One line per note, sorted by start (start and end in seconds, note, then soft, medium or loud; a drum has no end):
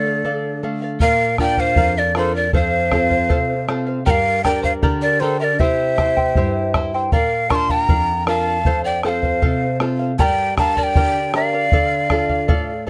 0.00 0.97 D3 medium
0.00 0.23 A3 medium
0.00 0.59 A4 medium
0.00 0.59 D5 medium
0.06 0.24 D5 soft
0.06 0.24 F5 soft
0.24 0.62 D4 soft
0.24 0.62 A4 medium
0.24 0.62 D5 medium
0.24 0.63 F5 medium
0.63 1.00 A3 soft
0.63 0.82 A4 medium
0.63 0.82 D5 medium
0.63 0.81 F5 medium
0.82 1.01 D5 soft
0.82 1.01 F5 medium
1.00 1.75 A#2 medium
1.00 1.36 A#4 medium
1.00 1.38 A#4 medium
1.00 1.39 D5 medium
1.00 1.37 F5 medium
1.00 1.39 F5 medium
1.00 bombo low medium
1.38 2.00 D4 medium
1.38 2.00 F4 soft
1.38 1.58 A#4 medium
1.38 2.01 A#4 medium
1.38 1.61 D5 medium
1.38 1.58 D5 medium
1.38 1.57 F5 medium
1.38 1.62 G5 medium
1.38 bombo rim soft
1.38 bombo low soft
1.57 1.99 C5 medium
1.57 1.76 D5 soft
1.57 1.77 F5 medium
1.57 2.00 F5 loud
1.57 bombo low soft
1.76 2.52 F2 medium
1.76 2.14 A#4 medium
1.76 2.14 D5 medium
1.76 2.15 F5 medium
1.76 bombo low medium
1.97 2.15 A#4 medium
1.97 2.17 D5 medium
2.15 2.46 D4 soft
2.15 2.46 F4 soft
2.15 2.34 A4 medium
2.15 2.34 A#4 medium
2.15 2.47 A#4 medium
2.15 2.34 C5 medium
2.15 2.35 D5 medium
2.15 2.33 F5 medium
2.15 bombo rim medium
2.35 2.53 A#4 medium
2.35 2.54 D5 soft
2.35 2.53 D5 medium
2.35 2.53 F5 medium
2.53 3.28 F2 medium
2.53 2.90 A4 medium
2.53 3.65 C5 medium
2.53 2.91 C5 medium
2.53 2.91 F5 medium
2.53 3.65 F5 medium
2.53 bombo low medium
2.91 3.53 C4 soft
2.91 3.54 F4 soft
2.91 3.11 A4 medium
2.91 3.54 A4 medium
2.91 3.10 C5 medium
2.91 3.09 F5 medium
2.91 bombo rim medium
2.91 bombo low medium
3.10 3.29 C5 soft
3.10 3.29 F5 soft
3.10 bombo low soft
3.29 4.05 C3 medium
3.29 3.67 A4 medium
3.29 3.68 C5 medium
3.29 3.68 F5 medium
3.29 bombo low medium
3.68 3.99 C4 medium
3.68 3.99 F4 soft
3.68 3.87 A4 medium
3.68 4.00 A4 medium
3.68 3.87 C5 medium
3.68 3.85 F5 medium
3.68 bombo rim medium
3.87 4.05 C5 soft
3.87 4.06 F5 medium
4.06 4.81 G2 medium
4.06 4.45 G4 medium
4.06 4.43 A#4 medium
4.06 4.42 A#4 medium
4.06 4.44 D5 medium
4.06 4.43 G5 medium
4.06 4.11 G5 medium
4.06 4.44 A#5 medium
4.06 bombo low medium
4.10 4.42 F5 loud
4.44 5.07 D4 medium
4.44 5.07 G4 soft
4.44 4.63 A#4 medium
4.44 5.07 A#4 medium
4.44 4.62 D5 medium
4.44 4.63 D5 medium
4.44 4.64 G5 medium
4.44 4.62 G5 loud
4.44 4.62 A#5 medium
4.44 bombo rim soft
4.44 bombo low soft
4.62 4.82 A#4 soft
4.62 4.71 C5 medium
4.62 4.82 D5 medium
4.62 4.73 F5 medium
4.62 4.82 A#5 medium
4.62 bombo low soft
4.82 5.57 D3 medium
4.82 5.21 G4 medium
4.82 5.20 A#4 medium
4.82 5.20 D5 medium
4.82 5.19 G5 medium
4.82 5.21 A#5 medium
4.82 bombo low medium
5.02 5.23 A#4 medium
5.02 5.22 D5 medium
5.20 5.52 D4 soft
5.20 5.52 G4 soft
5.20 5.40 A4 medium
5.20 5.40 A#4 medium
5.20 5.52 A#4 medium
5.20 5.40 C5 medium
5.20 5.40 D5 medium
5.20 5.40 G5 medium
5.20 5.39 A#5 medium
5.40 5.62 A#4 medium
5.40 5.60 A#4 soft
5.40 5.60 D5 soft
5.40 5.61 D5 medium
5.40 5.45 E5 medium
5.40 5.60 A#5 medium
5.59 6.34 C3 medium
5.59 5.97 E4 medium
5.59 5.98 G4 medium
5.59 5.97 C5 medium
5.59 6.75 C5 medium
5.59 6.74 E5 medium
5.59 5.96 E5 medium
5.59 5.98 G5 medium
5.59 bombo low medium
5.98 6.59 E4 soft
5.98 6.17 E4 soft
5.98 6.59 G4 soft
5.98 6.16 C5 medium
5.98 6.60 C5 medium
5.98 6.17 E5 medium
5.98 6.15 G5 medium
5.98 bombo rim soft
5.98 bombo low medium
6.17 6.36 E4 soft
6.17 6.36 C5 soft
6.17 6.36 G5 medium
6.17 bombo low soft
6.35 7.11 G2 medium
6.35 6.74 E4 medium
6.35 6.75 G4 medium
6.35 6.74 C5 medium
6.35 6.73 E5 medium
6.35 6.74 G5 medium
6.35 bombo low medium
6.74 7.05 E4 medium
6.74 6.94 E4 medium
6.74 7.05 G4 soft
6.74 6.94 C5 medium
6.74 7.06 C5 medium
6.74 6.93 E5 medium
6.74 6.93 G5 medium
6.74 bombo rim medium
6.74 bombo low medium
6.94 7.12 E4 soft
6.94 7.13 C5 medium
6.94 7.13 G5 medium
7.12 7.87 A#2 medium
7.12 7.48 A#4 medium
7.12 7.51 A#4 medium
7.12 7.50 D5 medium
7.12 7.52 F5 medium
7.12 7.50 F5 medium
7.12 bombo low medium
7.50 8.12 D4 medium
7.50 8.12 F4 soft
7.50 7.70 A#4 medium
7.50 8.13 A#4 medium
7.50 7.70 D5 medium
7.50 7.68 F5 medium
7.50 7.72 A5 medium
7.50 7.56 C#6 medium
7.50 bombo rim medium
7.50 bombo low medium
7.55 7.72 C6 medium
7.69 7.88 D5 soft
7.69 7.88 F5 soft
7.69 8.27 G5 medium
7.69 8.28 A#5 loud
7.69 bombo low soft
7.89 8.64 F2 medium
7.89 8.26 A#4 medium
7.89 8.26 D5 medium
7.89 8.27 F5 medium
7.89 bombo low medium
8.26 8.58 D4 soft
8.26 8.58 F4 soft
8.26 8.46 A#4 medium
8.26 8.58 A#4 medium
8.26 8.47 D5 medium
8.26 8.81 F5 medium
8.26 8.46 F5 medium
8.26 8.81 A5 medium
8.26 bombo rim medium
8.47 8.66 D5 soft
8.47 8.66 F5 medium
8.65 9.40 F2 medium
8.65 9.03 A4 medium
8.65 9.03 C5 medium
8.65 9.04 F5 medium
8.65 bombo low medium
8.84 9.02 D5 medium
8.84 9.03 G5 medium
9.03 9.65 C4 soft
9.03 9.66 F4 soft
9.03 9.23 A4 medium
9.03 9.66 A4 medium
9.03 9.23 C5 medium
9.03 9.77 C5 medium
9.03 9.22 F5 medium
9.03 9.09 G5 medium
9.03 bombo rim soft
9.08 9.77 F5 medium
9.23 9.41 C5 soft
9.23 9.42 F5 soft
9.23 bombo low medium
9.42 10.17 C3 medium
9.42 9.79 A4 medium
9.42 9.80 C5 medium
9.42 9.80 F5 medium
9.42 bombo low medium
9.80 10.11 C4 soft
9.80 10.11 F4 soft
9.80 10.00 A4 medium
9.80 10.12 A4 medium
9.80 10.00 C5 medium
9.80 9.98 F5 medium
9.80 bombo rim medium
9.99 10.18 C5 soft
9.99 10.19 F5 soft
10.19 10.93 G2 medium
10.19 10.57 G4 medium
10.19 10.56 A#4 medium
10.19 10.57 D5 medium
10.19 10.55 D5 medium
10.19 10.56 G5 medium
10.19 10.54 G5 loud
10.19 10.23 A5 medium
10.19 10.57 A#5 medium
10.19 bombo low medium
10.57 11.18 D4 soft
10.57 11.19 G4 soft
10.57 10.76 A#4 medium
10.57 11.19 A#4 medium
10.57 10.76 D5 medium
10.57 10.78 F5 medium
10.57 10.76 G5 medium
10.57 10.78 A5 loud
10.57 10.76 A#5 medium
10.57 bombo rim medium
10.57 bombo low medium
10.77 10.95 A#4 soft
10.77 11.34 D5 medium
10.77 10.96 D5 soft
10.77 10.84 A5 medium
10.77 10.96 A#5 medium
10.77 bombo low soft
10.83 11.35 G5 medium
10.95 11.70 D3 medium
10.95 11.34 G4 medium
10.95 11.34 A#4 medium
10.95 11.34 D5 medium
10.95 11.33 G5 medium
10.95 11.35 A#5 medium
10.95 bombo low medium
11.34 11.64 D4 soft
11.34 11.65 G4 soft
11.34 11.65 A#4 medium
11.34 11.53 A#4 medium
11.34 11.53 D5 medium
11.34 12.84 D5 medium
11.34 12.84 F5 medium
11.34 11.53 G5 medium
11.34 11.52 A#5 medium
11.34 bombo rim medium
11.53 11.73 A#4 soft
11.53 11.72 D5 medium
11.53 11.72 A#5 soft
11.72 12.47 D3 medium
11.72 12.09 A4 medium
11.72 12.09 D5 medium
11.72 12.10 F5 medium
11.72 bombo low medium
12.10 12.72 D4 soft
12.10 12.72 F4 soft
12.10 12.29 A4 medium
12.10 12.72 A4 medium
12.10 12.29 D5 medium
12.10 12.28 F5 medium
12.10 bombo rim medium
12.10 bombo low medium
12.29 12.47 D5 soft
12.29 12.48 F5 medium
12.29 bombo low soft
12.48 12.90 A2 medium
12.48 12.85 A4 medium
12.48 12.86 D5 medium
12.48 12.87 F5 medium
12.48 bombo low medium
12.87 12.90 A4 medium